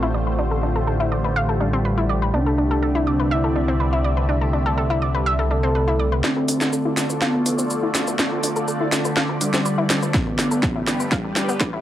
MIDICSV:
0, 0, Header, 1, 7, 480
1, 0, Start_track
1, 0, Tempo, 487805
1, 381, Time_signature, 4, 2, 24, 8
1, 11622, End_track
2, 0, Start_track
2, 0, Title_t, "Synth arpeggio sound"
2, 0, Program_c, 0, 84
2, 26, Note_on_c, 0, 64, 99
2, 77, Note_off_c, 0, 64, 0
2, 141, Note_on_c, 0, 74, 74
2, 196, Note_off_c, 0, 74, 0
2, 265, Note_on_c, 0, 71, 73
2, 375, Note_off_c, 0, 71, 0
2, 380, Note_on_c, 0, 62, 78
2, 436, Note_off_c, 0, 62, 0
2, 505, Note_on_c, 0, 69, 73
2, 615, Note_off_c, 0, 69, 0
2, 620, Note_on_c, 0, 62, 73
2, 712, Note_off_c, 0, 62, 0
2, 745, Note_on_c, 0, 69, 74
2, 796, Note_off_c, 0, 69, 0
2, 860, Note_on_c, 0, 69, 76
2, 915, Note_off_c, 0, 69, 0
2, 984, Note_on_c, 0, 64, 96
2, 1036, Note_off_c, 0, 64, 0
2, 1100, Note_on_c, 0, 74, 72
2, 1155, Note_off_c, 0, 74, 0
2, 1224, Note_on_c, 0, 71, 75
2, 1335, Note_off_c, 0, 71, 0
2, 1340, Note_on_c, 0, 77, 96
2, 1458, Note_off_c, 0, 77, 0
2, 1464, Note_on_c, 0, 69, 74
2, 1574, Note_off_c, 0, 69, 0
2, 1580, Note_on_c, 0, 62, 73
2, 1672, Note_off_c, 0, 62, 0
2, 1704, Note_on_c, 0, 60, 100
2, 1756, Note_off_c, 0, 60, 0
2, 1820, Note_on_c, 0, 71, 80
2, 1912, Note_off_c, 0, 71, 0
2, 1944, Note_on_c, 0, 64, 95
2, 1996, Note_off_c, 0, 64, 0
2, 2060, Note_on_c, 0, 74, 72
2, 2116, Note_off_c, 0, 74, 0
2, 2185, Note_on_c, 0, 71, 75
2, 2295, Note_off_c, 0, 71, 0
2, 2300, Note_on_c, 0, 62, 81
2, 2356, Note_off_c, 0, 62, 0
2, 2424, Note_on_c, 0, 69, 73
2, 2535, Note_off_c, 0, 69, 0
2, 2540, Note_on_c, 0, 62, 70
2, 2632, Note_off_c, 0, 62, 0
2, 2665, Note_on_c, 0, 69, 73
2, 2716, Note_off_c, 0, 69, 0
2, 2780, Note_on_c, 0, 69, 81
2, 2836, Note_off_c, 0, 69, 0
2, 2904, Note_on_c, 0, 64, 97
2, 2956, Note_off_c, 0, 64, 0
2, 3021, Note_on_c, 0, 74, 74
2, 3076, Note_off_c, 0, 74, 0
2, 3145, Note_on_c, 0, 71, 73
2, 3255, Note_off_c, 0, 71, 0
2, 3260, Note_on_c, 0, 76, 96
2, 3379, Note_off_c, 0, 76, 0
2, 3385, Note_on_c, 0, 69, 71
2, 3495, Note_off_c, 0, 69, 0
2, 3500, Note_on_c, 0, 62, 74
2, 3592, Note_off_c, 0, 62, 0
2, 3624, Note_on_c, 0, 60, 98
2, 3676, Note_off_c, 0, 60, 0
2, 3740, Note_on_c, 0, 71, 78
2, 3832, Note_off_c, 0, 71, 0
2, 3865, Note_on_c, 0, 64, 96
2, 3916, Note_off_c, 0, 64, 0
2, 3980, Note_on_c, 0, 74, 73
2, 4035, Note_off_c, 0, 74, 0
2, 4104, Note_on_c, 0, 71, 72
2, 4214, Note_off_c, 0, 71, 0
2, 4220, Note_on_c, 0, 62, 81
2, 4275, Note_off_c, 0, 62, 0
2, 4344, Note_on_c, 0, 69, 71
2, 4454, Note_off_c, 0, 69, 0
2, 4460, Note_on_c, 0, 62, 74
2, 4552, Note_off_c, 0, 62, 0
2, 4585, Note_on_c, 0, 69, 73
2, 4636, Note_off_c, 0, 69, 0
2, 4700, Note_on_c, 0, 69, 79
2, 4755, Note_off_c, 0, 69, 0
2, 4824, Note_on_c, 0, 64, 95
2, 4876, Note_off_c, 0, 64, 0
2, 4939, Note_on_c, 0, 74, 70
2, 4995, Note_off_c, 0, 74, 0
2, 5064, Note_on_c, 0, 71, 73
2, 5174, Note_off_c, 0, 71, 0
2, 5179, Note_on_c, 0, 76, 98
2, 5298, Note_off_c, 0, 76, 0
2, 5304, Note_on_c, 0, 69, 75
2, 5414, Note_off_c, 0, 69, 0
2, 5420, Note_on_c, 0, 62, 75
2, 5512, Note_off_c, 0, 62, 0
2, 5543, Note_on_c, 0, 60, 98
2, 5595, Note_off_c, 0, 60, 0
2, 5659, Note_on_c, 0, 71, 77
2, 5752, Note_off_c, 0, 71, 0
2, 5783, Note_on_c, 0, 64, 99
2, 5835, Note_off_c, 0, 64, 0
2, 5899, Note_on_c, 0, 74, 74
2, 5955, Note_off_c, 0, 74, 0
2, 6024, Note_on_c, 0, 71, 72
2, 6134, Note_off_c, 0, 71, 0
2, 6139, Note_on_c, 0, 62, 81
2, 6195, Note_off_c, 0, 62, 0
2, 6264, Note_on_c, 0, 69, 74
2, 6374, Note_off_c, 0, 69, 0
2, 6380, Note_on_c, 0, 62, 73
2, 6472, Note_off_c, 0, 62, 0
2, 6505, Note_on_c, 0, 69, 73
2, 6556, Note_off_c, 0, 69, 0
2, 6619, Note_on_c, 0, 69, 81
2, 6675, Note_off_c, 0, 69, 0
2, 6743, Note_on_c, 0, 64, 94
2, 6796, Note_off_c, 0, 64, 0
2, 6859, Note_on_c, 0, 74, 74
2, 6915, Note_off_c, 0, 74, 0
2, 6984, Note_on_c, 0, 71, 76
2, 7094, Note_off_c, 0, 71, 0
2, 7099, Note_on_c, 0, 77, 98
2, 7218, Note_off_c, 0, 77, 0
2, 7224, Note_on_c, 0, 69, 74
2, 7334, Note_off_c, 0, 69, 0
2, 7341, Note_on_c, 0, 62, 75
2, 7432, Note_off_c, 0, 62, 0
2, 7465, Note_on_c, 0, 60, 100
2, 7516, Note_off_c, 0, 60, 0
2, 7580, Note_on_c, 0, 71, 81
2, 7672, Note_off_c, 0, 71, 0
2, 7705, Note_on_c, 0, 64, 100
2, 7756, Note_off_c, 0, 64, 0
2, 7821, Note_on_c, 0, 74, 77
2, 7876, Note_off_c, 0, 74, 0
2, 7945, Note_on_c, 0, 71, 73
2, 8055, Note_off_c, 0, 71, 0
2, 8060, Note_on_c, 0, 62, 80
2, 8116, Note_off_c, 0, 62, 0
2, 8185, Note_on_c, 0, 69, 73
2, 8295, Note_off_c, 0, 69, 0
2, 8300, Note_on_c, 0, 62, 74
2, 8392, Note_off_c, 0, 62, 0
2, 8425, Note_on_c, 0, 69, 74
2, 8476, Note_off_c, 0, 69, 0
2, 8540, Note_on_c, 0, 69, 80
2, 8596, Note_off_c, 0, 69, 0
2, 8665, Note_on_c, 0, 64, 97
2, 8716, Note_off_c, 0, 64, 0
2, 8781, Note_on_c, 0, 74, 76
2, 8836, Note_off_c, 0, 74, 0
2, 8905, Note_on_c, 0, 71, 76
2, 9015, Note_off_c, 0, 71, 0
2, 9020, Note_on_c, 0, 77, 101
2, 9139, Note_off_c, 0, 77, 0
2, 9145, Note_on_c, 0, 69, 77
2, 9255, Note_off_c, 0, 69, 0
2, 9261, Note_on_c, 0, 62, 76
2, 9353, Note_off_c, 0, 62, 0
2, 9384, Note_on_c, 0, 60, 101
2, 9436, Note_off_c, 0, 60, 0
2, 9501, Note_on_c, 0, 71, 81
2, 9592, Note_off_c, 0, 71, 0
2, 9624, Note_on_c, 0, 64, 103
2, 9676, Note_off_c, 0, 64, 0
2, 9740, Note_on_c, 0, 74, 76
2, 9796, Note_off_c, 0, 74, 0
2, 9865, Note_on_c, 0, 71, 76
2, 9975, Note_off_c, 0, 71, 0
2, 9981, Note_on_c, 0, 62, 83
2, 10036, Note_off_c, 0, 62, 0
2, 10105, Note_on_c, 0, 69, 74
2, 10215, Note_off_c, 0, 69, 0
2, 10221, Note_on_c, 0, 62, 74
2, 10313, Note_off_c, 0, 62, 0
2, 10345, Note_on_c, 0, 69, 77
2, 10396, Note_off_c, 0, 69, 0
2, 10460, Note_on_c, 0, 69, 84
2, 10516, Note_off_c, 0, 69, 0
2, 10585, Note_on_c, 0, 64, 102
2, 10636, Note_off_c, 0, 64, 0
2, 10700, Note_on_c, 0, 74, 76
2, 10756, Note_off_c, 0, 74, 0
2, 10824, Note_on_c, 0, 71, 77
2, 10935, Note_off_c, 0, 71, 0
2, 10940, Note_on_c, 0, 77, 101
2, 11059, Note_off_c, 0, 77, 0
2, 11065, Note_on_c, 0, 69, 75
2, 11175, Note_off_c, 0, 69, 0
2, 11180, Note_on_c, 0, 62, 76
2, 11272, Note_off_c, 0, 62, 0
2, 11305, Note_on_c, 0, 59, 101
2, 11356, Note_off_c, 0, 59, 0
2, 11420, Note_on_c, 0, 71, 85
2, 11512, Note_off_c, 0, 71, 0
2, 11543, Note_on_c, 0, 64, 102
2, 11595, Note_off_c, 0, 64, 0
2, 11622, End_track
3, 0, Start_track
3, 0, Title_t, "Analog synth pad"
3, 0, Program_c, 1, 89
3, 0, Note_on_c, 1, 57, 76
3, 0, Note_on_c, 1, 65, 70
3, 0, Note_on_c, 1, 67, 72
3, 0, Note_on_c, 1, 72, 85
3, 2263, Note_off_c, 1, 57, 0
3, 2263, Note_off_c, 1, 65, 0
3, 2263, Note_off_c, 1, 72, 0
3, 2300, Note_on_c, 1, 60, 79
3, 2300, Note_on_c, 1, 74, 72
3, 2301, Note_on_c, 1, 76, 84
3, 6102, Note_off_c, 1, 60, 0
3, 6102, Note_off_c, 1, 67, 0
3, 6102, Note_off_c, 1, 74, 0
3, 6102, Note_off_c, 1, 76, 0
3, 6140, Note_on_c, 1, 65, 78
3, 6140, Note_on_c, 1, 69, 71
3, 6140, Note_on_c, 1, 74, 85
3, 9942, Note_off_c, 1, 65, 0
3, 9942, Note_off_c, 1, 69, 0
3, 9981, Note_on_c, 1, 55, 83
3, 9981, Note_on_c, 1, 67, 74
3, 9981, Note_on_c, 1, 71, 73
3, 11622, Note_off_c, 1, 55, 0
3, 11622, Note_off_c, 1, 67, 0
3, 11622, Note_off_c, 1, 71, 0
3, 11622, Note_off_c, 1, 74, 0
3, 11622, End_track
4, 0, Start_track
4, 0, Title_t, "Analog synth lead"
4, 0, Program_c, 2, 81
4, 1580, Note_on_c, 2, 55, 90
4, 2300, Note_on_c, 2, 62, 101
4, 2315, Note_off_c, 2, 55, 0
4, 3259, Note_on_c, 2, 64, 96
4, 3274, Note_off_c, 2, 62, 0
4, 3888, Note_off_c, 2, 64, 0
4, 5420, Note_on_c, 2, 69, 89
4, 6048, Note_off_c, 2, 69, 0
4, 6140, Note_on_c, 2, 60, 100
4, 7008, Note_off_c, 2, 60, 0
4, 7098, Note_on_c, 2, 59, 95
4, 7727, Note_off_c, 2, 59, 0
4, 9259, Note_on_c, 2, 55, 93
4, 9887, Note_off_c, 2, 55, 0
4, 9980, Note_on_c, 2, 59, 102
4, 10848, Note_off_c, 2, 59, 0
4, 10940, Note_on_c, 2, 55, 99
4, 11568, Note_off_c, 2, 55, 0
4, 11622, End_track
5, 0, Start_track
5, 0, Title_t, "Synth drone"
5, 0, Program_c, 3, 95
5, 0, Note_on_c, 3, 50, 76
5, 0, Note_on_c, 3, 57, 75
5, 6128, Note_off_c, 3, 50, 0
5, 6129, Note_off_c, 3, 57, 0
5, 6140, Note_on_c, 3, 50, 78
5, 6140, Note_on_c, 3, 57, 76
5, 11622, Note_off_c, 3, 50, 0
5, 11622, Note_off_c, 3, 57, 0
5, 11622, End_track
6, 0, Start_track
6, 0, Title_t, "Detuned saw bass"
6, 0, Program_c, 4, 39
6, 0, Note_on_c, 4, 33, 85
6, 2278, Note_off_c, 4, 33, 0
6, 2300, Note_on_c, 4, 36, 86
6, 6117, Note_off_c, 4, 36, 0
6, 6265, Note_on_c, 4, 38, 82
6, 6345, Note_off_c, 4, 38, 0
6, 6380, Note_on_c, 4, 38, 96
6, 6467, Note_off_c, 4, 38, 0
6, 6504, Note_on_c, 4, 38, 89
6, 6585, Note_off_c, 4, 38, 0
6, 6745, Note_on_c, 4, 38, 87
6, 6825, Note_off_c, 4, 38, 0
6, 6860, Note_on_c, 4, 38, 96
6, 6947, Note_off_c, 4, 38, 0
6, 6984, Note_on_c, 4, 38, 90
6, 7065, Note_off_c, 4, 38, 0
6, 7225, Note_on_c, 4, 38, 83
6, 7305, Note_off_c, 4, 38, 0
6, 7340, Note_on_c, 4, 40, 94
6, 7426, Note_off_c, 4, 40, 0
6, 7465, Note_on_c, 4, 38, 91
6, 7545, Note_off_c, 4, 38, 0
6, 7704, Note_on_c, 4, 38, 85
6, 7785, Note_off_c, 4, 38, 0
6, 7820, Note_on_c, 4, 38, 99
6, 7906, Note_off_c, 4, 38, 0
6, 7944, Note_on_c, 4, 38, 90
6, 8025, Note_off_c, 4, 38, 0
6, 8185, Note_on_c, 4, 38, 86
6, 8265, Note_off_c, 4, 38, 0
6, 8300, Note_on_c, 4, 38, 97
6, 8386, Note_off_c, 4, 38, 0
6, 8424, Note_on_c, 4, 38, 89
6, 8505, Note_off_c, 4, 38, 0
6, 8665, Note_on_c, 4, 38, 86
6, 8745, Note_off_c, 4, 38, 0
6, 8780, Note_on_c, 4, 38, 99
6, 8867, Note_off_c, 4, 38, 0
6, 8905, Note_on_c, 4, 38, 92
6, 8985, Note_off_c, 4, 38, 0
6, 9145, Note_on_c, 4, 38, 86
6, 9225, Note_off_c, 4, 38, 0
6, 9261, Note_on_c, 4, 38, 96
6, 9347, Note_off_c, 4, 38, 0
6, 9385, Note_on_c, 4, 38, 92
6, 9465, Note_off_c, 4, 38, 0
6, 9626, Note_on_c, 4, 40, 86
6, 9705, Note_off_c, 4, 40, 0
6, 9741, Note_on_c, 4, 41, 102
6, 9827, Note_off_c, 4, 41, 0
6, 9865, Note_on_c, 4, 41, 91
6, 9945, Note_off_c, 4, 41, 0
6, 10105, Note_on_c, 4, 31, 84
6, 10185, Note_off_c, 4, 31, 0
6, 10221, Note_on_c, 4, 31, 98
6, 10307, Note_off_c, 4, 31, 0
6, 10345, Note_on_c, 4, 31, 90
6, 10425, Note_off_c, 4, 31, 0
6, 10585, Note_on_c, 4, 31, 89
6, 10665, Note_off_c, 4, 31, 0
6, 10701, Note_on_c, 4, 31, 101
6, 10787, Note_off_c, 4, 31, 0
6, 10825, Note_on_c, 4, 31, 92
6, 10905, Note_off_c, 4, 31, 0
6, 11065, Note_on_c, 4, 31, 85
6, 11145, Note_off_c, 4, 31, 0
6, 11181, Note_on_c, 4, 33, 97
6, 11267, Note_off_c, 4, 33, 0
6, 11306, Note_on_c, 4, 31, 89
6, 11385, Note_off_c, 4, 31, 0
6, 11547, Note_on_c, 4, 31, 88
6, 11622, Note_off_c, 4, 31, 0
6, 11622, End_track
7, 0, Start_track
7, 0, Title_t, "Drums"
7, 6140, Note_on_c, 9, 38, 46
7, 6140, Note_on_c, 9, 82, 54
7, 6238, Note_off_c, 9, 38, 0
7, 6238, Note_off_c, 9, 82, 0
7, 6380, Note_on_c, 9, 46, 100
7, 6380, Note_on_c, 9, 82, 75
7, 6479, Note_off_c, 9, 46, 0
7, 6479, Note_off_c, 9, 82, 0
7, 6505, Note_on_c, 9, 38, 42
7, 6505, Note_on_c, 9, 82, 55
7, 6603, Note_off_c, 9, 38, 0
7, 6603, Note_off_c, 9, 82, 0
7, 6620, Note_on_c, 9, 82, 52
7, 6719, Note_off_c, 9, 82, 0
7, 6860, Note_on_c, 9, 38, 47
7, 6860, Note_on_c, 9, 46, 99
7, 6860, Note_on_c, 9, 82, 74
7, 6959, Note_off_c, 9, 38, 0
7, 6959, Note_off_c, 9, 46, 0
7, 6959, Note_off_c, 9, 82, 0
7, 6985, Note_on_c, 9, 82, 54
7, 7083, Note_off_c, 9, 82, 0
7, 7101, Note_on_c, 9, 38, 51
7, 7101, Note_on_c, 9, 82, 54
7, 7199, Note_off_c, 9, 38, 0
7, 7199, Note_off_c, 9, 82, 0
7, 7340, Note_on_c, 9, 46, 96
7, 7340, Note_on_c, 9, 82, 77
7, 7439, Note_off_c, 9, 46, 0
7, 7439, Note_off_c, 9, 82, 0
7, 7464, Note_on_c, 9, 82, 58
7, 7563, Note_off_c, 9, 82, 0
7, 7580, Note_on_c, 9, 82, 55
7, 7678, Note_off_c, 9, 82, 0
7, 7820, Note_on_c, 9, 38, 54
7, 7820, Note_on_c, 9, 46, 101
7, 7820, Note_on_c, 9, 82, 80
7, 7918, Note_off_c, 9, 38, 0
7, 7918, Note_off_c, 9, 46, 0
7, 7918, Note_off_c, 9, 82, 0
7, 7944, Note_on_c, 9, 82, 55
7, 8043, Note_off_c, 9, 82, 0
7, 8059, Note_on_c, 9, 38, 58
7, 8059, Note_on_c, 9, 82, 55
7, 8158, Note_off_c, 9, 38, 0
7, 8158, Note_off_c, 9, 82, 0
7, 8299, Note_on_c, 9, 46, 104
7, 8299, Note_on_c, 9, 82, 73
7, 8398, Note_off_c, 9, 46, 0
7, 8398, Note_off_c, 9, 82, 0
7, 8424, Note_on_c, 9, 82, 55
7, 8523, Note_off_c, 9, 82, 0
7, 8540, Note_on_c, 9, 82, 52
7, 8638, Note_off_c, 9, 82, 0
7, 8780, Note_on_c, 9, 38, 61
7, 8780, Note_on_c, 9, 46, 102
7, 8780, Note_on_c, 9, 82, 74
7, 8878, Note_off_c, 9, 38, 0
7, 8878, Note_off_c, 9, 46, 0
7, 8878, Note_off_c, 9, 82, 0
7, 8904, Note_on_c, 9, 82, 54
7, 9003, Note_off_c, 9, 82, 0
7, 9020, Note_on_c, 9, 38, 65
7, 9020, Note_on_c, 9, 82, 55
7, 9118, Note_off_c, 9, 38, 0
7, 9118, Note_off_c, 9, 82, 0
7, 9260, Note_on_c, 9, 46, 103
7, 9260, Note_on_c, 9, 82, 77
7, 9359, Note_off_c, 9, 46, 0
7, 9359, Note_off_c, 9, 82, 0
7, 9385, Note_on_c, 9, 38, 60
7, 9385, Note_on_c, 9, 82, 54
7, 9483, Note_off_c, 9, 38, 0
7, 9483, Note_off_c, 9, 82, 0
7, 9500, Note_on_c, 9, 82, 54
7, 9599, Note_off_c, 9, 82, 0
7, 9741, Note_on_c, 9, 38, 73
7, 9741, Note_on_c, 9, 46, 110
7, 9741, Note_on_c, 9, 82, 77
7, 9839, Note_off_c, 9, 38, 0
7, 9839, Note_off_c, 9, 46, 0
7, 9839, Note_off_c, 9, 82, 0
7, 9865, Note_on_c, 9, 82, 55
7, 9964, Note_off_c, 9, 82, 0
7, 9981, Note_on_c, 9, 36, 120
7, 9981, Note_on_c, 9, 38, 74
7, 9981, Note_on_c, 9, 82, 55
7, 10079, Note_off_c, 9, 36, 0
7, 10079, Note_off_c, 9, 38, 0
7, 10079, Note_off_c, 9, 82, 0
7, 10220, Note_on_c, 9, 38, 73
7, 10220, Note_on_c, 9, 46, 108
7, 10220, Note_on_c, 9, 82, 74
7, 10319, Note_off_c, 9, 38, 0
7, 10319, Note_off_c, 9, 46, 0
7, 10319, Note_off_c, 9, 82, 0
7, 10345, Note_on_c, 9, 82, 53
7, 10443, Note_off_c, 9, 82, 0
7, 10460, Note_on_c, 9, 36, 121
7, 10461, Note_on_c, 9, 38, 75
7, 10461, Note_on_c, 9, 82, 51
7, 10559, Note_off_c, 9, 36, 0
7, 10559, Note_off_c, 9, 38, 0
7, 10559, Note_off_c, 9, 82, 0
7, 10700, Note_on_c, 9, 38, 78
7, 10700, Note_on_c, 9, 46, 110
7, 10700, Note_on_c, 9, 82, 74
7, 10799, Note_off_c, 9, 38, 0
7, 10799, Note_off_c, 9, 46, 0
7, 10799, Note_off_c, 9, 82, 0
7, 10825, Note_on_c, 9, 82, 52
7, 10923, Note_off_c, 9, 82, 0
7, 10940, Note_on_c, 9, 36, 125
7, 10940, Note_on_c, 9, 38, 85
7, 10940, Note_on_c, 9, 82, 54
7, 11039, Note_off_c, 9, 36, 0
7, 11039, Note_off_c, 9, 38, 0
7, 11039, Note_off_c, 9, 82, 0
7, 11180, Note_on_c, 9, 38, 83
7, 11180, Note_on_c, 9, 46, 108
7, 11180, Note_on_c, 9, 82, 74
7, 11278, Note_off_c, 9, 38, 0
7, 11278, Note_off_c, 9, 46, 0
7, 11278, Note_off_c, 9, 82, 0
7, 11305, Note_on_c, 9, 82, 54
7, 11403, Note_off_c, 9, 82, 0
7, 11420, Note_on_c, 9, 36, 125
7, 11420, Note_on_c, 9, 38, 89
7, 11420, Note_on_c, 9, 82, 55
7, 11519, Note_off_c, 9, 36, 0
7, 11519, Note_off_c, 9, 38, 0
7, 11519, Note_off_c, 9, 82, 0
7, 11622, End_track
0, 0, End_of_file